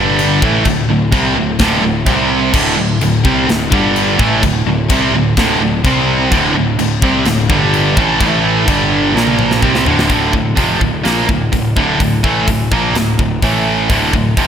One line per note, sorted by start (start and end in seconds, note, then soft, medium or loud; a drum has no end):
0.00 0.39 G1 loud
0.00 0.41 G2 loud
0.00 0.42 D3 loud
0.00 0.42 G3 loud
0.19 china medium
0.41 0.64 A1 loud
0.41 0.65 A2 medium
0.41 0.66 E3 loud
0.41 0.66 A3 loud
0.41 kick loud
0.65 0.88 D1 medium
0.65 0.84 D2 medium
0.65 0.85 A2 medium
0.65 kick medium
0.65 china medium
0.88 1.11 D1 medium
0.88 1.08 D2 medium
0.88 1.08 A2 medium
1.12 1.35 C2 medium
1.12 1.35 C3 medium
1.12 1.35 G3 loud
1.12 1.36 C4 loud
1.12 kick loud
1.12 china medium
1.35 1.58 D1 medium
1.35 1.55 D2 medium
1.35 1.55 A2 medium
1.59 1.81 D1 medium
1.59 1.82 D2 loud
1.59 1.82 A2 loud
1.59 1.83 D3 loud
1.59 kick loud
1.59 snare loud
1.59 china medium
1.81 2.04 D1 medium
1.81 2.02 D2 medium
1.81 2.02 A2 medium
2.06 2.51 C2 medium
2.06 2.53 C3 loud
2.06 2.54 G3 loud
2.06 2.54 C4 loud
2.06 kick loud
2.06 china medium
2.53 2.76 D1 loud
2.53 2.75 D2 medium
2.53 2.76 A2 medium
2.53 2.77 D3 loud
2.53 kick loud
2.53 crash loud
2.53 china medium
2.76 2.99 D1 medium
2.76 2.96 D2 medium
2.76 2.96 A2 medium
3.00 3.23 D1 medium
3.00 3.20 D2 medium
3.00 3.21 A2 medium
3.00 china medium
3.23 3.46 C2 loud
3.23 3.47 C3 loud
3.23 3.47 G3 loud
3.23 3.48 C4 medium
3.23 kick loud
3.47 3.70 D1 medium
3.47 3.67 D2 medium
3.47 3.67 A2 medium
3.47 snare loud
3.47 china medium
3.70 4.16 G1 medium
3.70 4.17 G2 medium
3.70 4.17 D3 loud
3.70 4.18 G3 loud
3.70 kick loud
3.96 china medium
4.17 4.41 A1 loud
4.17 4.41 A2 loud
4.17 4.41 E3 loud
4.17 4.42 A3 loud
4.17 kick loud
4.42 4.64 D1 medium
4.42 4.62 D2 medium
4.42 4.62 A2 medium
4.42 kick medium
4.42 china medium
4.65 4.88 D1 medium
4.65 4.85 D2 medium
4.65 4.85 A2 medium
4.89 5.11 C2 medium
4.89 5.12 C3 loud
4.89 5.13 G3 loud
4.89 5.13 C4 loud
4.89 kick loud
4.89 china medium
5.11 5.34 D1 medium
5.11 5.33 D2 medium
5.11 5.33 A2 medium
5.37 5.58 D1 medium
5.37 5.60 D2 loud
5.37 5.61 A2 loud
5.37 5.61 D3 loud
5.37 kick loud
5.37 snare loud
5.37 china medium
5.58 5.82 D1 medium
5.58 5.80 D2 medium
5.63 5.81 A2 medium
5.84 6.28 C2 medium
5.84 6.31 C3 loud
5.84 6.31 G3 loud
5.84 6.31 C4 loud
5.84 kick loud
5.84 china medium
6.32 6.54 D1 medium
6.32 6.54 D2 loud
6.32 6.54 A2 medium
6.32 6.55 D3 loud
6.32 kick loud
6.32 china medium
6.55 6.77 D1 medium
6.55 6.74 D2 medium
6.55 6.74 A2 medium
6.78 7.01 D1 medium
6.78 6.98 D2 medium
6.78 6.98 A2 medium
6.78 china medium
7.02 7.24 C2 loud
7.02 7.25 C3 loud
7.02 7.26 G3 medium
7.02 7.26 C4 loud
7.02 kick loud
7.25 7.48 D1 medium
7.25 7.45 D2 medium
7.25 7.46 A2 medium
7.25 snare loud
7.25 china medium
7.49 7.94 G1 loud
7.49 7.96 G2 medium
7.49 7.96 D3 medium
7.49 7.96 G3 loud
7.49 kick loud
7.74 china medium
7.96 8.19 A1 loud
7.96 8.18 A2 loud
7.96 8.19 E3 loud
7.96 8.20 A3 loud
7.96 kick loud
8.19 8.65 A1 loud
8.19 8.65 A2 medium
8.19 8.66 E3 medium
8.19 8.67 A3 loud
8.19 kick loud
8.19 china medium
8.66 9.12 G1 medium
8.66 9.13 G2 loud
8.66 9.14 D3 medium
8.66 9.14 G3 loud
8.66 kick loud
8.66 china medium
9.13 9.59 A#1 medium
9.13 9.61 A#2 loud
9.13 9.61 F3 medium
9.13 9.61 A#3 loud
9.17 snare medium
9.27 high tom medium
9.39 mid tom medium
9.51 snare medium
9.61 9.85 C2 medium
9.61 9.85 C3 loud
9.61 9.86 G3 loud
9.61 9.86 C4 loud
9.61 kick medium
9.75 snare medium
9.86 10.08 D1 medium
9.86 10.07 D2 medium
9.86 10.08 A2 loud
9.86 10.08 D3 loud
9.86 floor tom loud
9.99 snare loud
10.09 10.32 D1 medium
10.09 10.32 D2 medium
10.09 10.33 A2 loud
10.09 10.33 D3 loud
10.09 kick medium
10.09 open hi-hat medium
10.33 10.56 D1 medium
10.33 10.53 D2 medium
10.33 10.53 A2 medium
10.33 kick medium
10.57 10.80 F1 medium
10.57 10.80 F2 medium
10.57 10.80 C3 medium
10.57 10.81 F3 medium
10.57 kick loud
10.57 open hi-hat medium
10.80 11.04 D1 medium
10.80 11.00 D2 medium
10.80 11.00 A2 medium
10.80 kick medium
11.03 11.28 A#1 medium
11.03 11.27 A#2 loud
11.03 11.28 F3 medium
11.03 11.28 A#3 loud
11.03 snare loud
11.03 open hi-hat medium
11.28 11.51 D1 medium
11.28 11.48 D2 medium
11.28 11.48 A2 medium
11.28 kick medium
11.52 11.75 D1 medium
11.52 11.72 D2 medium
11.52 11.72 A2 medium
11.52 kick medium
11.52 open hi-hat medium
11.76 11.99 D1 loud
11.76 11.99 D2 medium
11.76 12.00 A2 medium
11.76 12.00 D3 loud
11.76 kick loud
12.00 12.22 D1 medium
12.00 12.19 D2 medium
12.00 12.20 A2 medium
12.00 kick medium
12.00 open hi-hat medium
12.24 12.46 A1 medium
12.24 12.47 A2 medium
12.24 12.47 E3 medium
12.24 12.48 A3 loud
12.24 kick loud
12.48 12.70 D1 medium
12.48 12.67 D2 medium
12.48 12.67 A2 medium
12.48 kick medium
12.48 open hi-hat medium
12.72 12.94 A#1 medium
12.72 12.95 A#2 medium
12.72 12.95 F3 loud
12.72 12.95 A#3 medium
12.72 kick loud
12.94 13.17 D1 medium
12.94 13.14 D2 medium
12.94 13.15 A2 medium
12.94 snare loud
12.94 open hi-hat medium
13.19 13.41 D1 medium
13.19 13.38 D2 medium
13.19 13.38 A2 medium
13.19 kick loud
13.42 13.87 A1 loud
13.42 13.89 A2 loud
13.42 13.89 E3 medium
13.42 13.90 A3 loud
13.42 kick medium
13.42 open hi-hat medium
13.90 14.12 D1 medium
13.90 14.13 D2 medium
13.90 14.13 A2 loud
13.90 14.14 D3 medium
13.90 kick loud
13.90 open hi-hat medium
14.13 14.35 D1 medium
14.13 14.33 D2 medium
14.13 14.33 A2 medium
14.13 kick medium
14.37 14.47 F1 medium
14.37 14.47 F2 medium
14.37 14.47 C3 loud
14.37 14.47 F3 loud
14.37 kick loud
14.37 open hi-hat medium